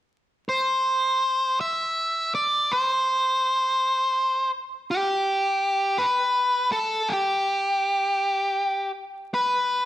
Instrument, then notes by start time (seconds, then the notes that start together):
lead electric guitar
0.49 C5
1.61 E5
2.35 D5
2.72 C5
4.91 G4
5.98 B4
6.72 A4
7.09 G4
9.34 B4